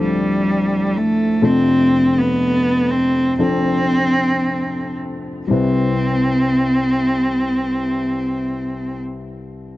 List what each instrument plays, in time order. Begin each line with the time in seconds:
Already playing: upright piano D2 A2 F3 C4 D4 A4
0.01 cello G3
0.96 cello A3
1.42 upright piano F2 C3 F3 A3 D4 A4, cello C4
2.18 cello B3
2.90 cello C4
3.38 upright piano F3 C4 D4 A4, cello C4
5.47 upright piano C2 G3 C4 E4, cello C4
5.53 upright piano B4